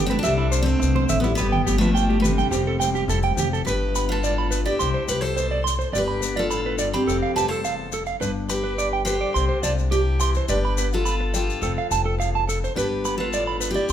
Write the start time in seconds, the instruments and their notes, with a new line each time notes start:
Already playing: upright bass G1, nylon-string guitar G2 D3 D4 G4
0.06 steel-string acoustic guitar C4, clean electric guitar B4, high conga
0.11 steel-string acoustic guitar A3
0.19 steel-string acoustic guitar D4
0.23 upright bass C2, nylon-string guitar C3, steel-string acoustic guitar G3, clean electric guitar E5, maracas
0.38 clean electric guitar E4
0.52 nylon-string guitar D4, clean electric guitar C5, maracas
0.62 steel-string acoustic guitar A3 C4
0.68 maracas
0.80 upright bass C2, nylon-string guitar B2, muted clean electric guitar stroke, maracas
0.96 clean electric guitar C5, high conga
1.09 upright bass A1, nylon-string guitar A2, clean electric guitar E5, low conga, maracas
1.20 steel-string acoustic guitar G3 B3, clean electric guitar E4
1.24 maracas
1.35 nylon-string guitar G2, steel-string acoustic guitar G3 B3, clean electric guitar B4, maracas
1.40 upright bass G1
1.52 clean electric guitar G5, low conga
1.66 upright bass G1, nylon-string guitar B3, clean electric guitar G4, high conga, maracas
1.78 steel-string acoustic guitar F3 A3, nylon-string guitar D4, clean electric guitar B4, maracas
1.95 nylon-string guitar G4, clean electric guitar G5, maracas
2.09 clean electric guitar G4, high conga
2.20 nylon-string guitar D3, steel-string acoustic guitar G3, clean electric guitar B4
2.24 steel-string acoustic guitar C3, low conga, maracas
2.38 clean electric guitar G5, high conga, maracas
2.51 upright bass F1, nylon-string guitar F3 G3 C4 G4, clean electric guitar G4, muted nylon-string guitar stroke, maracas
2.67 clean electric guitar A4
2.80 nylon-string guitar C4, clean electric guitar G5, high conga, maracas
2.95 clean electric guitar G4, maracas
3.08 upright bass F1, nylon-string guitar E4, clean electric guitar A4, maracas
3.23 nylon-string guitar G4, clean electric guitar G5, high conga
3.36 upright bass F1, nylon-string guitar F3, clean electric guitar G4, low conga, maracas
3.53 clean electric guitar A4, maracas
3.65 upright bass G1, nylon-string guitar G2 D4, steel-string acoustic guitar G4 B4, clean electric guitar B4, maracas
3.94 nylon-string guitar B3, clean electric guitar B5, maracas
4.09 steel-string acoustic guitar F4 A4, clean electric guitar B4
4.22 nylon-string guitar A2, clean electric guitar D5, maracas
4.38 clean electric guitar B5
4.51 nylon-string guitar B2, clean electric guitar B4, maracas
4.65 steel-string acoustic guitar E4 G4, clean electric guitar D5, maracas
4.79 upright bass C2, nylon-string guitar C3 D4, clean electric guitar C6, maracas
4.94 clean electric guitar C5
5.07 upright bass C2, nylon-string guitar G3, steel-string acoustic guitar G4 B4, maracas
5.21 steel-string acoustic guitar A4 C5
5.25 maracas
5.36 nylon-string guitar B2, clean electric guitar C5, maracas
5.51 clean electric guitar D5
5.63 nylon-string guitar A2, clean electric guitar C6
5.67 maracas
5.79 clean electric guitar C5, maracas
5.93 upright bass G1, nylon-string guitar G2 D4, steel-string acoustic guitar G4, clean electric guitar D5, maracas
5.98 steel-string acoustic guitar B4
6.08 clean electric guitar B5
6.21 nylon-string guitar B3, muted clean electric guitar stroke, maracas
6.36 steel-string acoustic guitar F4 A4, clean electric guitar D5
6.50 nylon-string guitar A2, clean electric guitar B5, maracas
6.66 clean electric guitar B4
6.78 nylon-string guitar G2, clean electric guitar D5, maracas
6.93 steel-string acoustic guitar C4 G4, clean electric guitar B5, maracas
7.07 upright bass F1, nylon-string guitar F2 C4, clean electric guitar A4, maracas
7.23 clean electric guitar F5
7.36 upright bass F1, nylon-string guitar G3, steel-string acoustic guitar G4 B4, clean electric guitar A5, maracas
7.48 steel-string acoustic guitar A4 C5, clean electric guitar A4, maracas
7.63 nylon-string guitar E2, clean electric guitar F5, maracas
7.91 nylon-string guitar F2, clean electric guitar A4, maracas
8.06 clean electric guitar F5, maracas
8.20 upright bass G1, nylon-string guitar G2 D4, clean electric guitar B4, maracas
8.49 nylon-string guitar G3, steel-string acoustic guitar G4 B4, muted clean electric guitar stroke, maracas
8.64 clean electric guitar B4
8.78 nylon-string guitar D4, clean electric guitar D5, maracas
8.93 clean electric guitar G5
9.05 nylon-string guitar D3 G4, steel-string acoustic guitar G4 C5, clean electric guitar B4, maracas
9.21 clean electric guitar D5
9.34 upright bass C2, nylon-string guitar C3, clean electric guitar C6, muted nylon-string guitar stroke, maracas
9.49 clean electric guitar C5
9.63 upright bass C2, nylon-string guitar G3, steel-string acoustic guitar F4 A4, clean electric guitar D5, maracas
9.79 maracas
9.91 nylon-string guitar D4, steel-string acoustic guitar E4 G4, clean electric guitar G4, maracas
10.20 nylon-string guitar E3 E4, clean electric guitar C6, maracas
10.35 clean electric guitar C5, maracas
10.48 upright bass G1, nylon-string guitar G2 D4, steel-string acoustic guitar G4 B4, clean electric guitar D5, maracas
10.65 clean electric guitar B5
10.78 nylon-string guitar B3, clean electric guitar B4, maracas
10.93 steel-string acoustic guitar F4 A4, maracas
11.05 nylon-string guitar D4, clean electric guitar B5, maracas
11.20 muted clean electric guitar stroke
11.34 nylon-string guitar D3 G4, steel-string acoustic guitar F4 A4, muted clean electric guitar stroke, maracas
11.50 maracas
11.62 upright bass F1, nylon-string guitar F2 C4, clean electric guitar A4, maracas
11.78 clean electric guitar F5
11.90 upright bass F1, nylon-string guitar G3, clean electric guitar A5, maracas
12.06 clean electric guitar A4
12.18 nylon-string guitar E2, clean electric guitar F5, maracas
12.35 clean electric guitar A5
12.47 nylon-string guitar F2, clean electric guitar A4, maracas
12.64 clean electric guitar C5, maracas
12.75 upright bass G1, nylon-string guitar G2 D4, steel-string acoustic guitar G4 B4, clean electric guitar B4, maracas
13.05 nylon-string guitar B3, clean electric guitar B5, maracas
13.18 steel-string acoustic guitar F4 A4, clean electric guitar B4
13.33 nylon-string guitar A2, clean electric guitar D5, maracas
13.47 clean electric guitar B5
13.61 nylon-string guitar B2, clean electric guitar B4, maracas
13.71 steel-string acoustic guitar E4 G4
13.76 clean electric guitar D5, maracas
13.89 upright bass C2, maracas